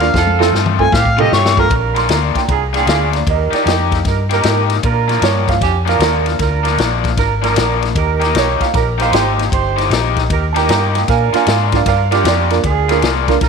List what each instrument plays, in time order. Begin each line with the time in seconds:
Already playing: fingered electric bass D#2, harmonica F5
0.00 upright piano A#3 D4 F4 A#4, snare, ride
0.13 fingered electric bass F2, horn section C4 F4 A4, kick, snare
0.27 high tom
0.39 overdriven electric guitar F3 A3 C4 F4, upright piano A3 C4 F4 A4, snare
0.52 fingered electric bass G2, overdriven electric guitar F3 A3 C4 F4, snare
0.66 mid tom
0.79 upright piano A3 C4 F4 A4, harmonica G#5, kick
0.91 fingered electric bass A2, horn section C4 F4 G4, harmonica F5, kick, snare
1.05 kick
1.17 overdriven electric guitar F3 A3 C4 F4, upright piano A3 C4 F4 A4, horn section C4 F4 G4, mid tom
1.21 harmonica D#5
1.30 fingered electric bass G2, overdriven electric guitar F3 A3 C4 F4, harmonica C#5, snare
1.46 snare
1.57 upright piano A3 C4 F4 A4, harmonica A#4, kick
1.69 fingered electric bass A#1, horn section D4 F4 A#4, kick, ride
1.93 overdriven electric guitar A#2 A#3 D4 F4, upright piano B5, ride
1.98 upright piano C6, snare
2.09 fingered electric bass D2, overdriven electric guitar A#2 A#3 D4 F4, upright piano A#5, snare, ride
2.35 upright piano G5, muted fingered electric bass stroke, kick, snare, ride
2.48 fingered electric bass C2, horn section D4 F4 G#4, upright piano A#5, kick, ride
2.73 overdriven electric guitar A#2 A#3 D4 F4, horn section D4 F4 G#4, upright piano G5, snare, ride
2.86 fingered electric bass D2, overdriven electric guitar A#2 A#3 D4 F4, upright piano F5, snare, ride
3.13 upright piano D5, snare, ride
3.26 fingered electric bass D#2, horn section D#4 G4 A#4, upright piano D#5, kick, ride
3.51 overdriven electric guitar D#3 A#3 D#4 G4, upright piano D5, muted fingered electric bass stroke, snare, ride
3.64 fingered electric bass F2, overdriven electric guitar D#3 A#3 D#4 G4, upright piano G4 D#5, snare, ride
3.92 kick, snare, ride
4.04 fingered electric bass G2, horn section D#4 G4 A#4, kick, snare, ride
4.30 overdriven electric guitar D#3 A#3 D#4 G4, horn section D#4 G4 A#4, snare, ride
4.43 fingered electric bass G#2, overdriven electric guitar D#3 A#3 D#4 G4, snare, ride
4.70 snare, ride
4.82 fingered electric bass A#2, horn section D4 F4 A#4, kick, ride
5.08 overdriven electric guitar A#2 F3 A#3 D4, snare, ride
5.21 fingered electric bass G2, overdriven electric guitar A#2 F3 A#3 D4, upright piano C#5, snare, ride
5.48 upright piano F5, kick, snare, ride
5.60 fingered electric bass F2, horn section D4 F4 G4, upright piano G#5, kick, snare, ride
5.85 overdriven electric guitar A#2 F3 A#3 D4, horn section D4 F4 A#4, upright piano F5, snare, ride
5.99 fingered electric bass D#2, overdriven electric guitar A#2 F3 A#3 D4, upright piano A#4, snare, ride
6.26 snare, ride
6.38 fingered electric bass D2, horn section D4 F4 A#4, kick, snare, ride
6.64 overdriven electric guitar A#2 F3 A#3 D4, snare, ride
6.77 fingered electric bass A#1, overdriven electric guitar A#2 F3 A#3 D4, snare, ride
7.04 kick, snare, ride
7.16 fingered electric bass G#1, horn section D4 F4 A#4, kick, snare, ride
7.41 overdriven electric guitar A#2 F3 A#3 D4, horn section D4 F4 A#4, ride
7.45 snare
7.55 fingered electric bass A#1, overdriven electric guitar A#2 F3 A#3 D4, snare, ride
7.82 snare, ride
7.94 fingered electric bass D#2, horn section D#4 G4 A#4, kick, ride
8.20 overdriven electric guitar D#3 A#3 D#4 G4, snare, ride
8.34 fingered electric bass B1, overdriven electric guitar D#3 A#3 D#4 G4, snare, ride
8.38 upright piano C#5
8.60 upright piano F5, muted fingered electric bass stroke, kick, snare, ride
8.72 fingered electric bass A#1, horn section D#4 G4 A#4, upright piano A#5, kick, snare, ride
8.98 overdriven electric guitar D#3 A#3 D#4 G4, horn section D#4 G4 C5, snare, ride
9.02 upright piano F5
9.12 fingered electric bass G#1, overdriven electric guitar D#3 A#3 D#4 G4, upright piano G4, snare, ride
9.39 snare, ride
9.50 fingered electric bass G1, horn section D#4 G4 C5, kick, ride
9.76 overdriven electric guitar D#3 A#3 D#4 G4, snare, ride
9.90 fingered electric bass A#1, overdriven electric guitar D#3 A#3 D#4 G4, snare, ride
10.16 kick, snare, ride
10.30 fingered electric bass D#2, horn section D#4 G4 A#4, kick, ride
10.53 overdriven electric guitar D#3 A#3 D#4 G4, horn section D#4 G4 A#4, upright piano G5 A5, ride
10.57 upright piano A#5, snare
10.69 fingered electric bass G2, overdriven electric guitar D#3 A#3 D#4 G4, upright piano G5 A#5, snare, ride
10.95 upright piano G5 A#5, snare, ride
11.07 fingered electric bass A#2, horn section D4 F4 A#4, upright piano F5 G#5, kick, snare, ride
11.33 overdriven electric guitar A#2 A#3 D4 F4, upright piano A#3 D4 F4 A#4 F5 G#5, muted fingered electric bass stroke, snare, ride
11.46 fingered electric bass G#2, overdriven electric guitar A#2 A#3 D4 F4, upright piano F5, snare, ride
11.51 upright piano G#5
11.72 upright piano A#3 D4 F4 A#4 D5, kick, snare, ride
11.76 upright piano F5
11.84 fingered electric bass G2, horn section D4 F4 A#4, upright piano D5, kick, snare, ride
11.89 upright piano F5
12.10 overdriven electric guitar A#2 A#3 D4 F4, upright piano A#3 D4 F4 A#4 D5 F5, horn section D4 F4 G4, snare, ride
12.24 fingered electric bass F2, overdriven electric guitar A#2 A#3 D4 F4, upright piano D5, snare, ride
12.50 upright piano A#3 D4 F4 A#4, snare, ride
12.63 fingered electric bass D2, horn section D4 F4 G#4, kick, ride
12.89 overdriven electric guitar A#2 A#3 D4 F4, upright piano A#3 D4 F4 A#4, snare, ride
13.02 fingered electric bass C2, overdriven electric guitar A#2 A#3 D4 F4, snare, ride
13.28 upright piano A#3 D4 F4 A#4, kick, snare, ride
13.40 fingered electric bass A#1, horn section D4 F4 A#4, kick, snare, ride